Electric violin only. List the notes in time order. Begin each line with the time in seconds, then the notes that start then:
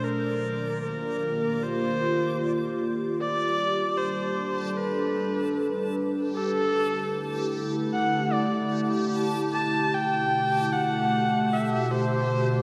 0.04 A#4
0.83 A#4
1.62 C5
3.21 D5
3.97 C5
4.77 B4
6.35 A4
7.93 F#5
8.32 D5
9.53 A5
9.94 G5
10.73 F#5
11.53 E5
11.91 C5